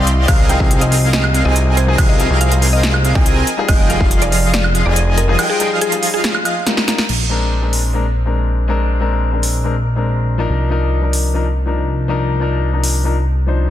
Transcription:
Already playing: C2 C4 G4 D5 D#5 F5 C6
0.07 closed hi-hat
0.28 C2 G#4 F5, kick, closed hi-hat, crash, high woodblock
0.49 F3 C4 D#4 G#4 G5, closed hi-hat
0.60 C2 C4 G#4 A#4 D#5 F5, kick
0.71 closed hi-hat
0.81 F3 C4 D#4 G#4 D#5, closed hi-hat
0.92 open hi-hat
1.12 F3 C4 D#4 G#4 D#5, snare, closed hi-hat
1.24 high woodblock
1.34 closed hi-hat
1.44 C2 F3 C4 D#4 G#4 A#4 D#5 G#5
1.56 closed hi-hat
1.77 C5, closed hi-hat
1.86 F3 C4 D#4 G#4
1.98 C2 F5, kick, closed hi-hat, crash, high woodblock
2.09 D#5
2.19 F3 C4 D#4 G#4, closed hi-hat
2.30 C2 C4 G#4 A#4 D#5 F5
2.41 F5, closed hi-hat
2.50 F3 C4 D#4 G#4, closed hi-hat
2.62 open hi-hat
2.73 D#5
2.82 F3 C4 D#4 G#4, snare, closed hi-hat
2.94 high woodblock
3.05 closed hi-hat
3.14 C2 F3 C4 D#4 G#4 A#4 D#5 G#5, kick
3.26 closed hi-hat
3.47 closed hi-hat
3.57 G3 D#4 F4 G#4
3.68 F1 F3 F4 G#4 D#5 G5, kick, closed hi-hat, crash, high woodblock
3.89 G3 D#4 F4 G#4 F5, closed hi-hat
4.01 F1 F3 F4 F5, kick
4.11 closed hi-hat
4.21 G3 D#4 F4 G#4 D5, closed hi-hat
4.32 open hi-hat
4.53 G3 D#4 F4 G#4 D5, snare, closed hi-hat
4.64 high woodblock
4.75 closed hi-hat
4.85 F1 F3 D#4 F4 G#4 D5 D#5 G#5
4.96 closed hi-hat
5.18 A#4, closed hi-hat
5.27 G3 D#4 F4 G#4
5.39 F3 F4 G#4 D#5 G5, closed hi-hat, crash, high woodblock
5.50 G#4
5.59 G3 D#4 F4 G#4, closed hi-hat
5.71 F3 F4 G#4 D#5 F5
5.81 G#4, closed hi-hat
5.91 G3 D#4 F4 G#4, closed hi-hat
6.03 open hi-hat
6.14 G#4
6.23 G3 D#4 F4 G#4, snare, closed hi-hat
6.35 high woodblock
6.45 closed hi-hat, high woodblock
6.66 G3 D#4 F4 A#4, snare, closed hi-hat
6.77 snare
6.87 G3 D#4 F4 A#4, snare, closed hi-hat
6.98 snare
7.09 A#1, crash
7.29 G#3 C4 D4 A#4
7.61 G#3 C4 D4 A#4
7.73 open hi-hat
7.93 G#3 C4 D4 A#4
8.25 G#3 C4 D4 A#4
8.68 G#3 C4 D4 A#4
9.00 G#3 C4 D4 A#4
9.32 G#3 C4 D4 A#4
9.43 open hi-hat
9.63 G#3 C4 D4 A#4
9.95 G#3 C4 D4 A#4
10.38 F3 D4 D#4 A#4
10.49 C2
10.70 F3 D4 D#4 A#4
11.02 F3 D4 D#4 A#4
11.13 open hi-hat
11.34 F3 D4 D#4 A#4
11.66 F3 D4 D#4 A#4
12.08 F3 D4 D#4 A#4
12.40 F3 D4 D#4 A#4
12.72 F3 D4 D#4 A#4
12.84 open hi-hat
13.04 F3 D4 D#4 A#4
13.46 F3 D4 D#4 C5

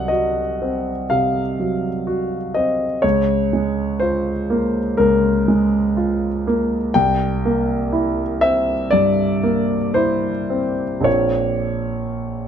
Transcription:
Already playing: C2 F#3 D#5 F#5
0.08 F#4 D#5
0.62 C4
1.10 C3 F5
1.60 F#3
2.07 F#4
2.54 C4 D#5
3.02 C#2 C#5
3.53 G#3
4.00 F4 C5
4.50 A#3
4.97 C#2 A#4
5.48 G#3
5.97 F4
6.47 A#3
6.94 C2 G5
7.45 A#3
7.92 E4
8.41 C4 E5
8.91 G2 D5
9.43 A#3
9.94 E4 C5
10.50 C4
11.01 A#1 A#3 C4 F4 C#5

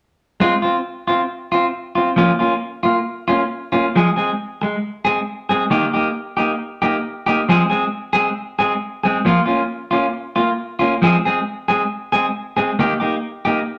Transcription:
0.40 G#3 C4 F4
0.62 C4 F4
1.07 C4 F4
1.52 C4 F4
1.95 C4 F4
2.16 F3 A#3 C#4 F4
2.39 A#3 C#4 F4
2.83 A#3 F4, muted clean electric guitar stroke
3.28 A#3 C#4 F4
3.72 A#3 C#4 F4
3.96 F3 G#3 G#4, muted clean electric guitar stroke
4.16 G#3 C4 G#4
4.62 G#3, muted clean electric guitar stroke
5.05 G#3 C4 G#4
5.49 G#3 C4 G#4
5.70 D#3 A#3 D#4 G4
5.94 A#3 D#4 G4
6.37 A#3 D#4 G4
6.82 A#3 D#4 G4
7.26 A#3 D#4 G4
7.49 F3 G#3 C4 G#4
7.70 G#3 C4 G#4
8.13 G#3 C4 G#4
8.59 G#3 C4 G#4
9.04 G#3 C4 G#4
9.25 F3 A#3 F4, muted clean electric guitar stroke
9.46 A#3 C#4 F4
9.91 A#3 C#4 F4
10.36 A#3 F4, muted clean electric guitar stroke
10.79 A#3 C#4 F4
11.02 F3 G#3 C4 G#4
11.25 G#3 C4 G#4
11.68 G#3 C4 G#4
12.12 G#3 C4 G#4
12.57 G#3 C4 G#4
12.79 D#3 A#3 D#4 G4
13.00 A#3 D#4 G4
13.45 A#3 D#4 G4

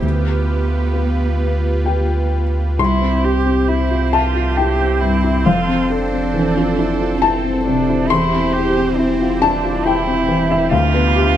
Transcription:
Already playing: G4
0.02 D2 B3 F4 B4
0.94 B3
1.84 F4 G4 G5
2.79 C2 C4 E4 G4 C5 C6
3.02 C4
3.24 G4
3.46 C4
3.68 E4
3.91 F4
4.13 F4 E5 A5
4.36 F4
4.57 E4 G4 G5
4.80 C4
5.01 G2 E4
5.24 E4
5.43 F1 F2 F4 A4 F5
5.68 C4
5.90 D4 A4
6.12 C4
6.34 E3
6.57 F4
6.79 E4
7.01 F4
7.21 C4 E4 A5
7.44 C4
7.65 C3 D4
7.89 E4
8.08 E1 E4 G4 C5 C6
8.12 E2
8.33 C4
8.53 G4
8.77 C4
8.98 C4 E4
9.22 F4
9.42 D4 E4 A5
9.64 F4
9.85 E4 G5
10.07 C4
10.28 E3
10.49 E4 E5
10.71 D2 D4 F4 B4 F5
10.94 B3
11.16 G4

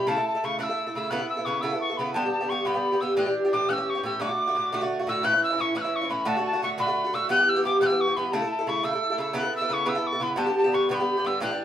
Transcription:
0.07 C#3 A3 E4 A4 A5
0.16 A3 E4 A4
0.28 A5
0.35 A3 E4 A4
0.44 C#3 A3 E4 A4 C#6
0.59 C#3 A3 E4 A4 F#6
0.63 E6
0.69 A3 E4 A4
0.87 A3 E4 A4
0.95 C#3 A3 E4 A4 E6
1.10 C#3 B3 E4 A4 F#6
1.19 B3 E4 A4
1.29 E6
1.37 B3 E4 A4
1.45 C#3 B3 E4 A4 C#6
1.61 C#3 B3 E4 A4 E6
1.72 B3 E4 A4
1.81 C#6
1.90 B3 E4 A4
1.97 C#3 B3 E4 A4 B5
2.14 G2 D3 B3 G4 A5
2.25 D3 B3 G4
2.33 A5
2.41 D3 B3 G4
2.49 G2 D3 B3 G4 C#6
2.65 G2 D3 B3 G4 B5
2.74 D3 B3 G4
2.92 D3 B3 G4
3.01 G2 D3 B3 G4 E6
3.17 A2 E3 D4 G4 F#6
3.26 E3 D4 G4
3.45 E3 D4 G4
3.53 A2 E3 D4 G4 D6
3.69 A2 E3 C#4 G4 F#6
3.73 E6
3.77 E3 C#4 G4
3.90 C#6
3.95 E3 C#4 G4
4.03 A2 E3 C#4 G4 E6
4.20 A2 D3 A3 F#4 D6
4.29 D3 A3 F#4
4.47 D3 A3 F#4
4.55 A2 D3 A3 F#4
4.72 A2 D3 A3 F#4
4.81 D3 A3 F#4
4.99 D3 A3 F#4
5.07 A2 D3 A3 F#4 E6
5.23 A2 E3 C#4 E4 F#6
5.33 E3 C#4 E4
5.44 E6
5.50 E3 C#4 E4
5.58 A2 E3 C#4 E4 C#6
5.75 A2 E3 C#4 E4 F#6
5.81 C#4 E4 E6
5.86 E3
5.96 C#6
6.01 E3 C#4 E4
6.09 A2 E3 C#4 E4 B5
6.25 A2 D3 A3 F#4 A5
6.37 D3 A3 F#4
6.46 A5
6.53 D3 A3 F#4
6.62 A2 D3 A3 F#4 C#6
6.78 A2 D3 A3 F#4 B5
6.87 D3 A3 F#4
7.04 D3 A3 F#4
7.13 A2 D3 A3 F#4 E6
7.29 G2 E3 B3 G4 F#6
7.38 E3 B3 G4
7.49 E6
7.56 E3 B3 G4
7.63 G2 E3 B3 G4 D6
7.81 G2 E3 B3 G4 F#6
7.86 G4 E6
7.91 E3 B3
8.01 C#6
8.08 E3 B3 G4
8.17 G2 E3 B3 G4 B5
8.32 C#3 A3 E4 A4 A5
8.42 A3 E4 A4
8.51 A5
8.59 A3 E4 A4
8.67 C#3 A3 E4 A4 C#6
8.83 C#3 A3 E4 A4 E6
8.93 A3 E4 A4
9.10 A3 E4 A4
9.18 C#3 A3 E4 A4 E6
9.33 C#3 B3 E4 A4 F#6
9.43 B3 E4 A4
9.56 E6
9.61 B3 E4 A4
9.69 C#3 B3 E4 A4
9.73 C#6
9.86 C#3 B3 E4 A4 E6
9.95 B3 E4 A4
10.07 C#6
10.13 B3 E4 A4
10.20 C#3 B3 E4 A4 B5
10.36 G2 D3 B3 G4 A5
10.46 D3 B3 G4
10.58 A5
10.64 D3 B3 G4
10.72 G2 D3 B3 G4 C#6
10.89 G2 D3 B3 G4 C#6
10.95 B5
11.00 D3 B3 G4
11.17 D3 B3 G4
11.25 G2 D3 B3 G4 E6
11.40 A2 E3 D4 G4 F#6
11.51 E3 D4 G4

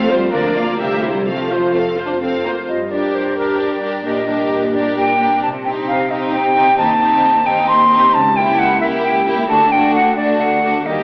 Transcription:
Already playing: F2 F3 C4
0.03 F4
0.10 G3 F4 C5
0.18 F4 A4
0.33 D2 D3 F3 A#3 D4 A#4 D5
0.47 A#3
0.56 A#3 F4 D5 F5
0.63 F4 A#4
0.79 C2 C3 A3 G4 A#4 E5
0.95 A#3
1.03 E4 G4 C5
1.10 G3 E4 G4
1.26 F2 F3 A3 C4 A4 F5
1.42 A3
1.51 F4 C5
1.58 F4
1.74 A3 C4 A4 F5
1.90 F4
1.98 F4 C5
2.06 D4 F5
2.21 C4 A4 F5
2.37 F4
2.45 A#3 F4 C5
2.53 A3
2.68 G2 D#5
2.91 A#3 D4 G4 A#4 D5
3.14 G2 G4 C5
3.37 D4 G4 A#4
3.60 G2 G4 D5
3.83 D4 G4 A#4
4.05 A#2 D4 G4 A#4 D#5
4.28 G3 D4 G4 A#4
4.51 A#2 G4
4.74 D4 G4 A#4 D5
4.96 A#2 G4 G5
5.19 D4 G4 A#4
5.42 C3 A5
5.64 C4 D#4 G4 G5
5.87 C3 G4 F5
6.10 C4 D#4 G4 C5 D#5
6.32 C3 G4 G5
6.55 C4 D#4 G4
6.77 D#2 D#3 C4 D#4 G4 A5
7.00 C4 D#4 G4
7.23 D#2 C5
7.45 C4 D#4 G4 D#5 G5
7.67 D#2 C5 C6
7.91 C4 D#4 G4
8.13 C#2 C#3 A5
8.36 A#3 E4 G4 G5
8.58 C#2 F#5
8.80 A#3 E4 G4 A#4 E5
9.03 C#2 G5
9.26 A#3 E4 G4
9.49 D2 D3 A3 D4 F#4 A5
9.71 A3 D4 F#4 G5
9.94 D2 A4 F#5
10.16 A3 D4 F#4 D5
10.40 D2 A4 F#5
10.63 A3 D4 F#4
10.86 D#2 D#3 G3 A#3 G4 D#5

